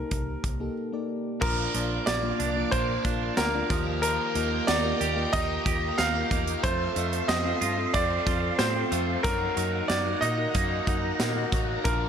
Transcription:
Already playing: fm electric piano C3 A#3 D#4 G4 A4 A#4 A5, grand piano A#4
0.11 fingered electric bass C2, kick, closed hi-hat
0.44 fingered electric bass C2, kick, closed hi-hat
0.60 fm electric piano A#3 D#4 G4 A4
0.92 fm electric piano A#3 D#4 G4 D5
1.40 fingered electric bass A#1, overdriven electric guitar A#2 F3, fm electric piano A#2 A#3 D4 F4 D5, clean electric guitar F3, grand piano A#4, string machine A#4 D5 F5 D6, kick, crash
1.45 overdriven electric guitar A#3
1.74 fingered electric bass A#1, clean electric guitar F3, fm electric piano A#3 D4 F4 D5, closed hi-hat
2.06 fingered electric bass A#1, clean electric guitar A#3, grand piano D5, snare, closed hi-hat, tambourine
2.23 fm electric piano A#3 D4 F4 D5
2.39 fingered electric bass C2, clean electric guitar D4, closed hi-hat
2.56 fm electric piano A#3 D4 F4 D5
2.71 fingered electric bass A#1, overdriven electric guitar A#2 F3 A#3, clean electric guitar A#3, grand piano C5, kick, closed hi-hat
3.05 fingered electric bass A#1, fm electric piano A#3 D4 F4 F5, clean electric guitar D4, kick, closed hi-hat
3.37 fingered electric bass D2, clean electric guitar A#3, grand piano A#4, snare, closed hi-hat, tambourine
3.53 fm electric piano A#3 D4 F4 D5
3.70 fingered electric bass D#2, fm electric piano D#3 A#3 F4 G4 D#5, clean electric guitar F3, overdriven electric guitar A#3 D#4, string machine F5 G5 A#5, kick, closed hi-hat
4.01 overdriven electric guitar D#3 A#3, clean electric guitar F3, grand piano A#4, closed hi-hat
4.06 overdriven electric guitar D#4
4.35 fingered electric bass D#2, fm electric piano A#3 F4 G4 D#5, clean electric guitar A#3, closed hi-hat
4.67 fingered electric bass D#2, clean electric guitar D#4, grand piano D5, snare, closed hi-hat, tambourine
4.84 fm electric piano A#3 F4 G4 D#5
5.01 fingered electric bass D#2, clean electric guitar G4, closed hi-hat
5.17 fm electric piano A#3 F4 G4 D#5
5.32 fingered electric bass D#2, overdriven electric guitar D#3 A#3 D#4, clean electric guitar D#4, grand piano D#5, kick, closed hi-hat
5.65 fingered electric bass D#2, fm electric piano A#3 F4 G4 D#5, clean electric guitar G4, kick, closed hi-hat
5.98 fingered electric bass D#2, clean electric guitar D#4, grand piano F5, snare, closed hi-hat, tambourine
6.14 fm electric piano A#3 F4 G4 D#5
6.31 fingered electric bass E2, clean electric guitar A#3, overdriven electric guitar A#3 D#4, kick, closed hi-hat
6.47 closed hi-hat
6.62 fingered electric bass F2, overdriven electric guitar F3 C4, clean electric guitar A3, fm electric piano C4 F4 A4 F5, string machine A4 C5 C6, grand piano C5, kick, closed hi-hat
6.67 overdriven electric guitar F4
6.96 fingered electric bass F2, clean electric guitar A3, fm electric piano C4 F4 A4 D#5, closed hi-hat
7.13 closed hi-hat
7.28 fingered electric bass F2, clean electric guitar C4, grand piano D#5, snare, closed hi-hat, tambourine
7.45 fm electric piano C4 F4 A4 F5
7.61 fingered electric bass G2, clean electric guitar F4, closed hi-hat
7.78 fm electric piano C4 F4 A4 F5
7.93 fingered electric bass F2, overdriven electric guitar F3 C4 F4, clean electric guitar C4, grand piano D5, kick, closed hi-hat
8.26 fingered electric bass F2, fm electric piano C4 F4 A4 G5, clean electric guitar F4, kick, closed hi-hat
8.59 fingered electric bass A2, clean electric guitar C4, grand piano C5, snare, closed hi-hat, tambourine
8.75 fm electric piano C4 F4 A4 G5
8.91 fingered electric bass F2, clean electric guitar A3, overdriven electric guitar C4 F4, closed hi-hat
9.23 fingered electric bass F#2, overdriven electric guitar D#3 A#3, clean electric guitar F#3, fm electric piano D#4 F#4 A#4 F#5, string machine D#4 A#4 F#5 A#5, grand piano A#4, kick, closed hi-hat
9.28 overdriven electric guitar D#4
9.56 fingered electric bass F#2, clean electric guitar F#3, fm electric piano D#4 F#4 A#4 F#5, closed hi-hat
9.88 fingered electric bass F#2, clean electric guitar A#3, grand piano D5, snare, closed hi-hat, tambourine
10.05 fm electric piano D#4 F#4 A#4 F#5
10.21 fingered electric bass A#2, clean electric guitar D#4, grand piano D#5, closed hi-hat
10.38 fm electric piano D#4 F#4 A#4 D#5
10.54 fingered electric bass F#2, overdriven electric guitar D#3 A#3 D#4, clean electric guitar A#3, kick, closed hi-hat
10.87 fingered electric bass F#2, fm electric piano D#4 F#4 A#4 F#5, clean electric guitar D#4, kick, closed hi-hat
11.19 fingered electric bass A#2, clean electric guitar A#3, snare, closed hi-hat, tambourine
11.36 fm electric piano D#4 F#4 A#4 F#5
11.52 fingered electric bass A1, clean electric guitar F#3, overdriven electric guitar A#3 D#4, kick, closed hi-hat
11.84 fingered electric bass A#1, overdriven electric guitar A#2 F3, fm electric piano A#2 D4 F4 F5, clean electric guitar F3, grand piano A#4, string machine D5 F5 D6, kick, closed hi-hat
11.88 overdriven electric guitar A#3

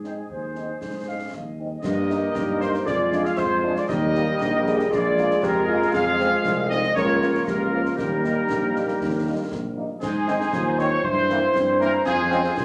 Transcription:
Already playing: tuba G#2, trumpet section G#4
0.04 french horn section G#3 C4 D#4, woodwind section G#4 C5, snare
0.29 tuba D#2, woodwind section C5, concert bass drum
0.55 french horn section G#3 C4 D#4, snare
0.81 tuba G#2, concert bass drum, snare
1.06 french horn section G#3 C4 D#4, woodwind section F5
1.32 tuba D#2, woodwind section D#5, concert bass drum, snare
1.59 french horn section G#3 C4 D#4
1.82 tuba G2, trombone section G3 A#3, euphonium G4, woodwind section G4 A#4, trumpet section D#5, flute section D#5, concert bass drum, snare, crash
2.10 french horn section A#3 D#4, snare
2.34 tuba G2, euphonium D#4, concert bass drum, snare
2.60 french horn section A#3 D#4, trumpet section C5, flute section C5, snare
2.74 snare
2.86 tuba F2, trombone section F3 G#3, euphonium F4, woodwind section F4 G#4, trumpet section D5, flute section D5, concert bass drum, snare
3.11 french horn section G#3 D4 F4, snare
3.24 flute section F5, trumpet section F5, snare
3.37 tuba F2, flute section C5, trumpet section C5, concert bass drum, snare
3.63 french horn section G#3 D4 F4
3.74 flute section D5, trumpet section D5, snare
3.88 tuba D#2, trombone section D#3 G3, euphonium G4, woodwind section G4 A#4, flute section D#5, trumpet section D#5, concert bass drum, snare, crash
4.14 french horn section G3 A#3 G4, euphonium D#4, snare
4.40 tuba A#1, euphonium D#4, concert bass drum, snare
4.66 french horn section G3 A#3 G4, euphonium G#4, snare
4.79 snare
4.90 tuba A#1, trombone section F3 G#3, woodwind section F4 G#4, flute section D5, trumpet section D5, concert bass drum, snare
5.18 french horn section G#3 A#3 F4, snare
5.31 snare
5.42 tuba F2, euphonium G4, flute section A#4, trumpet section A#4, concert bass drum, snare
5.68 french horn section G#3 A#3 F4, euphonium F4
5.82 snare
5.93 tuba F2, euphonium G#4, trumpet section F5, flute section F5, concert bass drum, snare, crash
6.19 euphonium G#3, french horn section G#3 C4 F4, snare
6.44 tuba C2, euphonium C4, concert bass drum, snare
6.69 french horn section G#3 C4 F4, euphonium D#4, trumpet section D#5, flute section D#5, snare
6.83 snare
6.95 tuba C#2, trombone section F3 A#3, euphonium F4, woodwind section F4 A#4, trumpet section C#5, flute section C#5, concert bass drum, snare
7.21 french horn section F3 A#3 F4, snare
7.35 snare
7.46 tuba C#2, euphonium G4, trumpet section A#4, flute section A#4, concert bass drum, snare
7.71 french horn section F3 A#3 F4, euphonium F4
7.85 snare
7.96 tuba D#2, trombone section G3 A#3, euphonium D#4, woodwind section G4 A#4, trumpet section A#4, flute section A#4, concert bass drum, snare, crash
8.23 french horn section G3 A#3 D#4, snare
8.48 tuba A#1, concert bass drum, snare
8.73 french horn section G3 A#3 D#4, snare
8.88 snare
8.99 tuba D#2, concert bass drum, snare
9.26 french horn section G3 A#3 D#4
9.51 tuba A#1, concert bass drum, snare
9.76 french horn section G3 A#3 D#4
10.01 tuba G#2, woodwind section D#4 C5, trumpet section G#4, flute section G#5, concert bass drum, snare, crash
10.27 trombone section D#3 C4, french horn section G#3 C4 D#4, snare
10.41 snare
10.53 tuba D#2, euphonium F4, concert bass drum, snare
10.78 trombone section D#3 C4, french horn section G#3 C4 D#4, trumpet section C#5, flute section C#6, snare
11.03 tuba G2, woodwind section E4 C5, euphonium E4, trumpet section C5, flute section C6, concert bass drum
11.29 trombone section E3 A#3, french horn section A#3 C4 E4, snare
11.54 tuba G2, euphonium C4, concert bass drum, snare
11.79 trombone section E3 A#3, french horn section A#3 C4 E4, trumpet section A#4, flute section A#5, snare
12.05 tuba F2, woodwind section F4 C5, euphonium F4, trumpet section G#4, flute section G#5, concert bass drum, snare, crash
12.30 trombone section F3 C4, french horn section G#3 C4 F4, euphonium C#4, snare
12.44 snare
12.57 tuba C2, euphonium C4, concert bass drum, snare

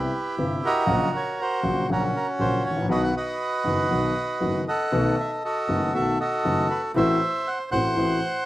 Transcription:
Already playing: bandoneon E4 G4 B4
0.38 double bass G1, grand piano G1 G2 C3 G3 B3 E4
0.65 bandoneon F#4 A#4 D#5
0.86 grand piano A#1 A#2 C#3 F#3 A#3 F#4, double bass A#1
1.17 bandoneon C#5
1.41 bandoneon F#4 C5
1.63 grand piano A#1 A#2 C#3 F#3 A#3 F#4, double bass A#1
1.88 double bass A#1, grand piano A#1 A#2 C#3 F#3 A#3 F#4, bandoneon C#4 F#4 A#4
2.16 bandoneon A#4
2.39 double bass A#1, grand piano A#1 A#2 C#3 F#3 A#3 F#4, bandoneon C5
2.64 double bass A1, bandoneon C#5
2.70 grand piano G#1
2.77 grand piano A1
2.82 grand piano A#1
2.88 grand piano B1 B2 D#3 F#3 B3 F#4, double bass B1, bandoneon F#4 B4 D#5
3.04 bandoneon F#5
3.16 bandoneon F#4 B4 D#5
3.64 grand piano F#1 F#2 D#3 F#3 B3 F#4, double bass F#1
3.90 double bass B1, grand piano B1 B2 D#3 F#3 B3 F#4
4.41 grand piano F#1 F#2 D#3 F#3 B3 F#4, double bass F#1
4.68 bandoneon A4 D#5 F#5
4.92 double bass B1, grand piano B1 B2 D#3 A3 B3 F#4
5.20 bandoneon E5
5.44 bandoneon F#4 A4 D#5
5.68 double bass F#1, grand piano F#1 F#2 D#3 A3 B3 F#4
5.94 double bass B1, grand piano B1 B2 D#3 A3 B3 F#4, bandoneon A4 E5
6.20 bandoneon F#4 A4 D#5
6.44 double bass F#1, grand piano F#1 F#2 D#3 A3 B3 F#4
6.70 bandoneon B4
6.95 double bass A1, grand piano A1 A2 E3 A3 C4 F#4, bandoneon C5 E5
7.47 bandoneon F#5
7.71 double bass A1, grand piano A1 A2 E3 A3 C4 F#4, bandoneon C5 F#5
7.96 double bass A1, grand piano A1 A2 E3 A3 C4 F#4

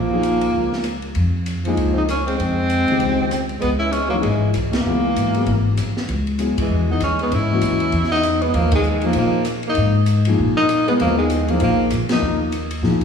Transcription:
Already playing: upright bass A#1, alto saxophone F3, tenor saxophone A#3
0.12 grand piano F3 A#3 D#4 G#4
0.23 hi-hat pedal, ride
0.41 ride
0.53 upright bass C#2
0.73 snare
0.84 cross-stick, hi-hat pedal, ride
1.02 ride
1.15 upright bass F2, ride
1.46 hi-hat pedal, ride
1.64 alto saxophone F3, grand piano F3 A#3 D#4 G#4, tenor saxophone G#3, ride
1.77 upright bass C#2, ride
1.93 alto saxophone C4
1.98 tenor saxophone D#4
2.07 alto saxophone A#3, tenor saxophone C#4, cross-stick, hi-hat pedal, ride
2.27 alto saxophone G#3, tenor saxophone C4, ride
2.37 upright bass F2, alto saxophone G#3, tenor saxophone C4, ride
2.70 hi-hat pedal, ride
2.88 grand piano C#3 D#3 G#3 G4, muted upright bass stroke, ride
3.00 upright bass C#2, ride
3.31 cross-stick, hi-hat pedal, ride
3.49 ride
3.60 upright bass C#2, alto saxophone G#3, tenor saxophone B3, ride
3.79 alto saxophone C#4, tenor saxophone E4
3.91 alto saxophone G#3, tenor saxophone C#4, hi-hat pedal, ride
4.09 grand piano E3, alto saxophone F#3, tenor saxophone A#3
4.13 grand piano A#3 D#4 F#4
4.20 upright bass G#1, alto saxophone E3, tenor saxophone G#3, ride
4.54 upright bass C2, cross-stick, hi-hat pedal, ride
4.70 alto saxophone E3, tenor saxophone A#3, snare, ride
4.85 upright bass C#2, grand piano F#3 B3 E4 G#4
5.16 upright bass G#2, hi-hat pedal, ride
5.34 grand piano F#3 B3 E4 G#4, ride
5.46 upright bass G#1, ride
5.77 upright bass C2, cross-stick, hi-hat pedal, ride
5.97 snare
6.09 upright bass C#2, ride
6.27 ride
6.39 grand piano F#3 B3 E4 G#4, hi-hat pedal, ride
6.57 alto saxophone E3, tenor saxophone G#3, muted upright bass stroke, kick, ride
6.70 upright bass E2
6.90 alto saxophone B3, tenor saxophone D#4
7.00 upright bass D#2, alto saxophone G#3, tenor saxophone C#4, cross-stick, hi-hat pedal, ride
7.19 alto saxophone G#3, tenor saxophone B3, ride
7.31 upright bass G#2, alto saxophone C#4, tenor saxophone E4, ride
7.52 grand piano E3 A#3 F#4 D#5
7.61 upright bass D#2, hi-hat pedal, ride
7.80 ride
7.92 upright bass E2, ride
8.04 snare
8.11 alto saxophone B3, tenor saxophone D#4, snare
8.23 cross-stick, hi-hat pedal, ride
8.42 alto saxophone G#3, tenor saxophone B3, ride
8.53 upright bass D#2, alto saxophone F3, tenor saxophone A#3, ride
8.72 alto saxophone D#3, tenor saxophone G#3, kick, ride
8.83 hi-hat pedal
9.01 grand piano F3 A#3 D#4 G#4, alto saxophone F3, ride
9.06 tenor saxophone A#3
9.13 upright bass A#2, alto saxophone F3, ride
9.18 tenor saxophone A#3
9.45 cross-stick, hi-hat pedal, ride
9.63 ride
9.67 alto saxophone A#3, tenor saxophone D#4
9.75 upright bass G#2, ride
10.06 hi-hat pedal, ride
10.25 grand piano F3 A#3 D#4 G#4, ride
10.39 upright bass A#2
10.57 alto saxophone A#3, tenor saxophone D#4
10.69 cross-stick, hi-hat pedal, ride
10.87 alto saxophone G#3, grand piano G#3 B3 E4 A#4, tenor saxophone B3, ride
11.00 upright bass D#2, alto saxophone F3, tenor saxophone A#3, ride
11.18 alto saxophone D#3, tenor saxophone G#3
11.30 hi-hat pedal, ride
11.48 alto saxophone F3, grand piano F3 A#3 D#4 G#4, tenor saxophone A#3, ride
11.60 upright bass A#1, alto saxophone F3, tenor saxophone A#3, ride
11.90 upright bass A#2, cross-stick, hi-hat pedal, ride
12.09 grand piano F3 A#3 D#4 A#4, alto saxophone A#3, tenor saxophone D#4, snare, ride
12.22 upright bass D#2
12.52 hi-hat pedal, ride
12.71 ride
12.82 upright bass A#1, grand piano F3 A#3 D#4 G#4, snare
13.01 kick, ride

